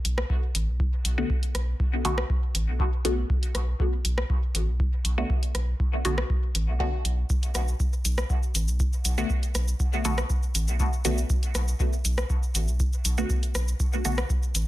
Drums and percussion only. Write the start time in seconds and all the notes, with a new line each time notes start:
0.05 closed hi-hat
0.18 cross-stick
0.30 kick
0.55 closed hi-hat
0.80 kick
1.05 closed hi-hat
1.30 kick
1.43 closed hi-hat
1.55 cross-stick, closed hi-hat
1.80 kick
2.05 closed hi-hat
2.18 cross-stick
2.30 kick
2.55 closed hi-hat
2.80 kick
3.05 closed hi-hat
3.30 kick
3.43 closed hi-hat
3.55 cross-stick, closed hi-hat
3.80 kick
4.05 closed hi-hat
4.18 cross-stick
4.30 kick
4.55 closed hi-hat
4.80 kick
5.05 closed hi-hat
5.30 kick
5.43 closed hi-hat
5.55 cross-stick, closed hi-hat
5.80 kick
6.05 closed hi-hat
6.18 cross-stick
6.30 kick
6.55 closed hi-hat
6.80 kick
7.05 closed hi-hat
7.30 kick, shaker
7.43 closed hi-hat, shaker
7.55 cross-stick, closed hi-hat, shaker
7.68 shaker
7.80 kick, shaker
7.93 shaker
8.05 closed hi-hat, shaker
8.18 cross-stick, shaker
8.30 kick, shaker
8.43 shaker
8.55 closed hi-hat, shaker
8.68 shaker
8.80 kick, shaker
8.93 shaker
9.05 closed hi-hat, shaker
9.18 shaker
9.30 kick, shaker
9.43 closed hi-hat, shaker
9.55 cross-stick, closed hi-hat, shaker
9.68 shaker
9.80 kick, shaker
9.93 shaker
10.05 closed hi-hat, shaker
10.18 cross-stick, shaker
10.30 kick, shaker
10.43 shaker
10.55 closed hi-hat, shaker
10.68 shaker
10.80 kick, shaker
10.93 shaker
11.05 closed hi-hat, shaker
11.18 shaker
11.30 kick, shaker
11.43 closed hi-hat, shaker
11.55 cross-stick, closed hi-hat, shaker
11.68 shaker
11.80 kick, shaker
11.93 shaker
12.05 closed hi-hat, shaker
12.18 cross-stick, shaker
12.30 kick, shaker
12.43 shaker
12.55 closed hi-hat, shaker
12.68 shaker
12.80 kick, shaker
12.93 shaker
13.05 closed hi-hat, shaker
13.18 shaker
13.30 kick, shaker
13.43 closed hi-hat, shaker
13.55 cross-stick, closed hi-hat, shaker
13.68 shaker
13.80 kick, shaker
13.93 shaker
14.05 closed hi-hat, shaker
14.18 cross-stick, shaker
14.30 kick, shaker
14.43 shaker
14.55 closed hi-hat, shaker